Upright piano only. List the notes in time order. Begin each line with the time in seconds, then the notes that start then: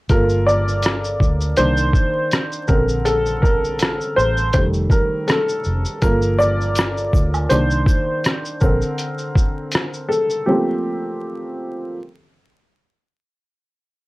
0.10 A#3 F4 A4 A#4
0.47 D5
1.57 D#3 A#3 D4 C5
2.68 D3 C4 A4 A#4
3.05 A4
3.42 A#4
4.16 C5
4.54 D#3 G3 A3 C5
4.91 A#4
5.28 A4
6.02 F3 A#3 A4 A#4
6.38 D5
7.49 D#3 A#3 D4 C5
8.61 D3 C4 A4 A#4
10.09 A4
10.46 F3 A3 A#3 C4 G4